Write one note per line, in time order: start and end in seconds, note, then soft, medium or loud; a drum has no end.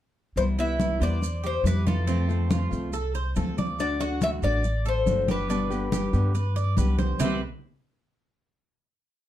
0.36 0.97 C2 medium
0.36 0.57 C3 medium
0.36 0.58 E3 medium
0.36 0.58 G3 medium
0.36 0.58 B3 medium
0.36 0.57 E4 medium
0.36 0.43 C5 loud
0.36 high conga soft
0.36 maracas medium
0.59 0.77 E3 medium
0.59 0.78 G3 medium
0.59 0.78 B3 medium
0.59 1.00 E4 medium
0.59 0.79 E4 medium
0.59 1.03 E5 loud
0.59 high conga soft
0.59 maracas soft
0.79 1.00 E3 soft
0.79 1.00 G3 soft
0.79 1.00 B3 soft
0.79 0.99 E4 soft
0.79 high conga medium
0.79 maracas medium
1.00 1.61 E2 medium
1.00 1.21 E3 soft
1.00 1.21 G3 soft
1.00 1.21 B3 medium
1.00 1.21 E4 medium
1.00 1.43 C5 medium
1.00 1.46 D5 medium
1.00 high conga soft
1.00 maracas soft
1.21 muted nylon-string guitar stroke medium
1.21 high conga soft
1.21 maracas medium
1.44 1.85 G4 medium
1.44 1.67 C5 medium
1.44 high conga soft
1.44 maracas soft
1.64 2.65 F2 medium
1.64 2.07 E3 soft
1.64 2.07 G3 medium
1.64 2.08 B3 soft
1.64 2.08 E4 medium
1.64 1.87 B4 medium
1.64 high conga medium
1.64 maracas medium
1.87 2.07 F4 medium
1.87 2.69 A4 medium
1.87 high conga medium
1.87 maracas soft
2.07 2.28 C3 medium
2.07 2.28 F3 medium
2.07 2.28 A3 medium
2.07 2.49 C4 medium
2.07 2.28 C4 medium
2.07 2.27 F4 medium
2.07 high conga soft
2.07 maracas medium
2.29 2.48 F3 soft
2.29 2.49 A3 medium
2.29 2.49 C4 medium
2.29 2.50 F4 medium
2.29 high conga soft
2.29 maracas soft
2.49 2.71 F3 soft
2.49 2.71 A3 soft
2.49 2.71 C4 medium
2.49 2.92 F4 medium
2.49 2.70 F4 medium
2.49 high conga medium
2.49 maracas medium
2.71 3.32 C2 medium
2.71 2.91 F3 soft
2.71 2.92 A3 medium
2.71 2.91 C4 medium
2.71 2.92 F4 medium
2.71 high conga soft
2.71 maracas soft
2.92 3.14 A4 medium
2.92 muted nylon-string guitar stroke medium
2.92 high conga soft
2.92 maracas medium
3.15 3.36 C5 medium
3.15 high conga soft
3.15 maracas soft
3.35 4.37 D2 medium
3.35 3.77 F3 soft
3.35 3.78 A3 soft
3.35 3.78 C4 medium
3.35 3.78 F4 medium
3.35 3.57 A4 medium
3.35 high conga medium
3.35 maracas medium
3.58 3.99 D5 medium
3.58 high conga medium
3.58 maracas soft
3.79 3.99 D3 medium
3.79 3.99 A3 medium
3.79 4.00 D4 medium
3.79 3.99 F#4 medium
3.79 3.99 D5 medium
3.79 high conga soft
3.79 maracas medium
4.00 4.20 A3 soft
4.00 4.21 D4 medium
4.00 4.21 F#4 medium
4.00 4.42 F#4 medium
4.00 4.22 F#5 medium
4.00 high conga soft
4.00 maracas soft
4.21 4.42 D3 medium
4.21 4.42 A3 medium
4.21 4.42 D4 medium
4.21 4.41 F#4 medium
4.21 4.29 E5 loud
4.21 high conga medium
4.21 maracas medium
4.43 5.03 A1 medium
4.43 4.63 A3 medium
4.43 4.64 D4 medium
4.43 4.63 F#4 medium
4.43 4.85 D5 medium
4.43 4.87 D5 medium
4.43 high conga soft
4.43 maracas soft
4.64 muted nylon-string guitar stroke medium
4.64 high conga soft
4.64 maracas medium
4.85 5.27 A4 medium
4.85 5.31 C5 medium
4.85 high conga soft
4.85 maracas soft
5.06 6.07 G1 medium
5.06 5.48 D3 soft
5.06 5.48 A3 soft
5.06 5.49 D4 medium
5.06 5.49 F#4 medium
5.06 high conga medium
5.06 maracas medium
5.28 5.49 G4 medium
5.28 6.75 B4 medium
5.28 high conga medium
5.28 maracas soft
5.49 5.70 B2 medium
5.49 5.70 D3 medium
5.49 5.70 G3 medium
5.49 5.70 B3 medium
5.49 5.91 D4 medium
5.49 5.69 G4 medium
5.49 high conga soft
5.49 maracas medium
5.70 5.90 D3 medium
5.70 5.90 G3 medium
5.70 5.91 B3 medium
5.70 5.91 G4 medium
5.70 high conga soft
5.70 maracas soft
5.91 6.12 D3 medium
5.91 6.12 G3 medium
5.91 6.13 B3 medium
5.91 6.34 G4 medium
5.91 6.12 G4 medium
5.91 high conga medium
5.91 maracas medium
6.13 6.74 G2 medium
6.13 6.33 D3 medium
6.13 6.34 G3 medium
6.13 6.34 B3 medium
6.13 6.33 G4 medium
6.13 high conga soft
6.13 maracas soft
6.34 6.56 B4 medium
6.34 muted nylon-string guitar stroke medium
6.34 high conga soft
6.34 maracas medium
6.56 6.77 D5 medium
6.56 high conga soft
6.56 maracas soft
6.77 7.15 C2 medium
6.77 7.19 D3 soft
6.77 7.19 G3 soft
6.77 7.19 B3 soft
6.77 7.20 G4 medium
6.77 6.98 B4 medium
6.77 high conga medium
6.77 maracas medium
6.99 7.20 C5 medium
6.99 high conga medium
6.99 maracas soft
7.19 7.40 C2 medium
7.19 7.37 C3 medium
7.19 7.37 E3 medium
7.19 7.37 G3 medium
7.19 7.38 B3 medium
7.19 7.40 C4 medium
7.19 7.38 E4 medium
7.19 7.40 G4 medium
7.19 7.40 B4 medium
7.19 7.40 E5 medium
7.19 low conga loud
7.19 maracas medium